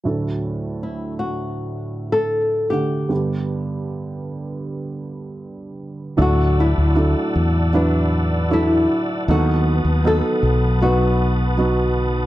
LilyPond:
<<
  \new Staff \with { instrumentName = "Tonewheel organ" } { \time 4/4 \key d \major \tempo 4 = 78 << { r1 | r1 | <d'' e'''>1 | <b' dis'''>1 | } \\ { r1 | r1 | <fis'' a''>1~ | <fis'' a''>1 | } >> }
  \new Staff \with { instrumentName = "Nylon-string guitar" } { \time 4/4 \key d \major r4 e'8 fis'4~ fis'16 a'8. g'8~ | g'8 r2. r8 | fis'8 e'4. d'4 e'4 | fis'4 a'4 fis'4. r8 | }
  \new Staff \with { instrumentName = "Upright piano" } { \time 4/4 \key d \major <fis a d' a'>2.~ <fis a d' a'>8 <d a d' fis''>8 | <g b d' g'>1 | <fis d' e' a'>4 <fis d' e' a'>4 <fis d' e' b'>4 <fis d' e' a'>4 | <fis b dis' a'>4 <fis b dis' a'>4 <fis b dis' b'>4 <fis b dis' fis'>4 | }
  \new Staff \with { instrumentName = "Upright piano" } { \clef bass \time 4/4 \key d \major <d, a,>1 | <g, d>1 | a,4. r2 r8 | dis4. r2 r8 | }
  \new Staff \with { instrumentName = "Fretless electric bass" } { \clef bass \time 4/4 \key d \major r1 | r1 | d,8. d,8 r16 e,2 r8 | dis,8. dis,8 r16 b,,2~ b,,8 | }
>>